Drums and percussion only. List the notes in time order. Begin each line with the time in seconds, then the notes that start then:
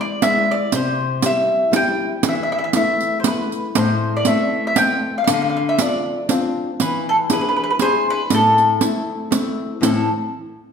0.22 riq
0.72 riq
1.22 riq
1.73 riq
2.23 riq
2.73 riq
3.01 riq
3.24 riq
3.52 riq
3.75 riq
4.25 riq
4.76 riq
5.27 riq
5.79 riq
6.29 riq
6.80 riq
7.30 riq
7.79 riq
8.30 riq
8.58 riq
8.81 riq
9.32 riq
9.83 riq